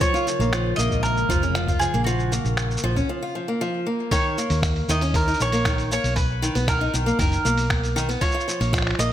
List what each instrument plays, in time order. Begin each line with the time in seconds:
Already playing: ambient pad D#4 A#4
0.01 ambient pad C#3, steel-string acoustic guitar F3, mandolin C#5, kick, cabasa
0.14 steel-string acoustic guitar F4, cabasa
0.27 steel-string acoustic guitar F3, cabasa
0.39 fingered electric bass A#1, steel-string acoustic guitar A#3, cabasa
0.45 ambient pad G#3
0.53 steel-string acoustic guitar F3, ambient pad F5, finger snap, cabasa
0.76 fingered electric bass A#1, steel-string acoustic guitar A#3, mandolin D#5, cabasa
0.91 kick, cabasa
1.03 mandolin A#4, cabasa
1.17 cabasa
1.29 fingered electric bass F1, steel-string acoustic guitar F3, kick, cabasa
1.43 steel-string acoustic guitar C#4, cabasa
1.55 steel-string acoustic guitar F3, finger snap, cabasa
1.68 steel-string acoustic guitar F4, kick, cabasa
1.79 steel-string acoustic guitar F3, mandolin G#4, cabasa
1.94 fingered electric bass A#1, steel-string acoustic guitar A#3, cabasa
2.04 steel-string acoustic guitar F3, mandolin F#4, cabasa
2.19 cabasa
2.32 steel-string acoustic guitar A#3, cabasa
2.45 fingered electric bass A#1, cabasa
2.57 finger snap, cabasa
2.71 cabasa
2.77 cabasa
2.84 fingered electric bass A#1, steel-string acoustic guitar F3
2.96 steel-string acoustic guitar C#4, kick, cabasa
3.09 steel-string acoustic guitar F3
3.22 steel-string acoustic guitar F4
3.35 steel-string acoustic guitar F3
3.48 steel-string acoustic guitar A#3
3.61 steel-string acoustic guitar F3
3.87 steel-string acoustic guitar A#3
4.11 steel-string acoustic guitar D#3, mandolin C#5, kick, open hi-hat, cabasa
4.38 steel-string acoustic guitar A#3, cabasa
4.50 fingered electric bass D#2, open hi-hat, cabasa
4.63 finger snap, kick, open hi-hat, cabasa
4.76 open hi-hat
4.88 fingered electric bass D#2, steel-string acoustic guitar D#3, mandolin D#5, cabasa
5.01 steel-string acoustic guitar C#4, open hi-hat, cabasa
5.14 steel-string acoustic guitar D#3, mandolin A#4, kick, open hi-hat, cabasa
5.27 steel-string acoustic guitar D#4, open hi-hat, cabasa
5.29 open hi-hat
5.32 open hi-hat, cabasa
5.35 open hi-hat
5.37 fingered electric bass A#1, steel-string acoustic guitar D#3, open hi-hat, cabasa
5.42 mandolin C#5
5.52 steel-string acoustic guitar A#3, open hi-hat, cabasa
5.65 steel-string acoustic guitar D#3, finger snap, kick, open hi-hat, cabasa
5.78 open hi-hat, cabasa
5.91 steel-string acoustic guitar A#3, mandolin C#5, cabasa
6.04 fingered electric bass B1, open hi-hat, cabasa
6.16 mandolin B4, kick, open hi-hat, cabasa
6.42 steel-string acoustic guitar D#3, cabasa
6.55 fingered electric bass B1, steel-string acoustic guitar B3, open hi-hat, cabasa
6.68 steel-string acoustic guitar D#3, mandolin A#4, finger snap, kick, open hi-hat, cabasa
6.81 steel-string acoustic guitar D#4, open hi-hat
6.94 fingered electric bass B1, steel-string acoustic guitar D#3, cabasa
7.06 steel-string acoustic guitar A#3, cabasa
7.19 fingered electric bass F#1, steel-string acoustic guitar D#3, mandolin A#4, kick, open hi-hat, cabasa
7.32 open hi-hat, cabasa
7.45 fingered electric bass B1, steel-string acoustic guitar A#3, cabasa
7.58 open hi-hat, cabasa
7.70 finger snap, kick, open hi-hat
7.84 open hi-hat, cabasa
7.96 steel-string acoustic guitar D#3, cabasa
8.09 steel-string acoustic guitar B3, open hi-hat, cabasa
8.21 steel-string acoustic guitar F3, mandolin C#5, kick, open hi-hat, cabasa
8.32 steel-string acoustic guitar F4, cabasa
8.40 cabasa
8.48 steel-string acoustic guitar F3, cabasa
8.61 fingered electric bass A#1, steel-string acoustic guitar A#3, open hi-hat, cabasa
8.73 steel-string acoustic guitar F3, finger snap, kick, open hi-hat, cabasa
8.78 finger snap
8.82 finger snap
8.87 finger snap, open hi-hat
8.91 finger snap
8.95 fingered electric bass A#1, steel-string acoustic guitar A#3, finger snap
8.99 mandolin D#5, cabasa